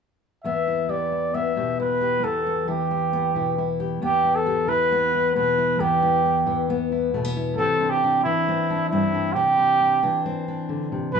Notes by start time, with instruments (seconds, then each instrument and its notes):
0.44 steel-string acoustic guitar E2 B3, trumpet E5
0.67 steel-string acoustic guitar E4
0.89 steel-string acoustic guitar E3 G4, trumpet D5
1.12 steel-string acoustic guitar E4
1.34 steel-string acoustic guitar B3, trumpet E5
1.56 steel-string acoustic guitar B2 G4
1.80 steel-string acoustic guitar E4, trumpet B4
2.01 steel-string acoustic guitar G4
2.23 steel-string acoustic guitar E2 B3, trumpet A4
2.47 steel-string acoustic guitar E4
2.68 steel-string acoustic guitar E3 E4, trumpet G4
2.91 steel-string acoustic guitar E4
3.13 steel-string acoustic guitar B3
3.35 steel-string acoustic guitar B2 E4
3.58 steel-string acoustic guitar E4
3.80 steel-string acoustic guitar G4
4.02 steel-string acoustic guitar E2 B3, trumpet G4
4.24 steel-string acoustic guitar E4
4.36 trumpet A4
4.46 steel-string acoustic guitar G4
4.68 steel-string acoustic guitar E3 E4, trumpet B4
4.92 steel-string acoustic guitar B3
5.15 steel-string acoustic guitar E4
5.35 steel-string acoustic guitar B2 B3, trumpet B4
5.58 steel-string acoustic guitar E4
5.79 steel-string acoustic guitar E2 B3, trumpet G4
6.02 steel-string acoustic guitar E4
6.25 steel-string acoustic guitar E4
6.46 steel-string acoustic guitar E3 E4
6.70 steel-string acoustic guitar B3
6.92 steel-string acoustic guitar E4
7.14 steel-string acoustic guitar B2 A3
7.24 steel-string acoustic guitar B3
7.37 steel-string acoustic guitar E4
7.57 steel-string acoustic guitar C3 C4, trumpet A4
7.81 steel-string acoustic guitar D4
7.90 trumpet G4
8.04 steel-string acoustic guitar D4
8.23 steel-string acoustic guitar E3 D4, trumpet E4
8.48 steel-string acoustic guitar C4
8.70 steel-string acoustic guitar D4
8.89 steel-string acoustic guitar G2 C4, trumpet E4
9.15 steel-string acoustic guitar D4
9.33 steel-string acoustic guitar C3 C4, trumpet G4
9.58 steel-string acoustic guitar D4
9.81 steel-string acoustic guitar D4
10.03 steel-string acoustic guitar E3 D4
10.26 steel-string acoustic guitar C4
10.48 steel-string acoustic guitar D4
10.69 steel-string acoustic guitar D3
10.92 steel-string acoustic guitar C3
11.14 steel-string acoustic guitar B2 G3 E4, trumpet B4